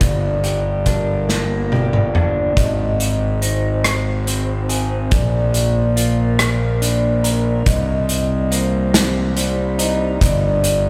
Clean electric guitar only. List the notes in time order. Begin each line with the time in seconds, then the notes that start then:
0.01 G2
0.44 G4
0.87 D4
1.29 A#3
1.72 G4
2.14 D4
2.57 G#2
3.42 D#4
3.85 G#3
4.27 C4
4.69 G#4
5.12 A#2
5.96 F4
6.39 A#3
6.81 D4
7.24 A#4
7.66 C2
8.51 A#3
8.94 C3
9.36 G3
9.78 D#4
10.21 G2